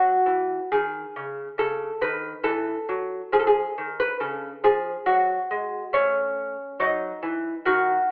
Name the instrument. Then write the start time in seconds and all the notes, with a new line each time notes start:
lute
Already playing: F#3 F#4
0.26 E3
0.72 D#3 G#4
1.16 C#3
1.58 C#3 A4
2.01 D#3 B4
2.43 E3 A4
2.89 F#3
3.32 F3 G#4
3.39 A4
3.47 G#4
3.78 D#3
4.00 B4
4.20 C#3 A4
4.64 F3 G#4
5.06 F#3 F#4
5.51 G#3
5.93 A3 C#4
6.80 F#3 D#4
7.23 E3
7.65 D#3 F#4